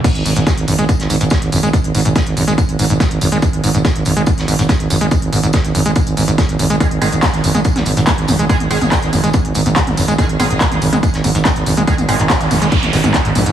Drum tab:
CC |x---------------|----------------|----------------|----------------|
HH |xxoxxxoxxxoxxxox|xxoxxxoxxxoxxxox|xxoxxxoxxxoxxxox|xxoxxxoxxxoxxxox|
TB |x-xxx-xxx-xxx-xx|x-xxx-xxx-xxx-xx|x-xxx-xxx-xxx-xx|x-xxx-xxxxxxx-xx|
CP |----------------|----------------|----------------|----------------|
SD |----o----o--o---|----o-------o---|----o----o--o---|----o-------o---|
T2 |----------------|----------------|----------------|----------------|
BD |o---o---o---o---|o---o---o---o---|o---o---o---o---|o---o---o---o---|

CC |----------------|----------------|----------------|----------------|
HH |xxoxxxoxxxoxxxox|xxoxxxoxxxoxxxox|xxoxxxoxxxoxxxox|xxoxxxoxxxoxxxox|
TB |x-xxx-xxx-xxx-xx|x-xxx-xxx-xxx-xx|x-xxx-xxx-xxx-xx|xxxxxxxxx-xxxxxx|
CP |----x-------x---|----x-------x---|----x-------x---|---xx-------x---|
SD |----o----o--o---|----o-------o---|----o----o--o---|----o-----o-o---|
T2 |--o-o--o-o--o-o-|-o-o--o-o--o-o--|o-o--o-o--o-o--o|-o--o-o--o-o--o-|
BD |o---o---o---o---|o---o---o---o---|o---o---o---o---|o---o---o---o---|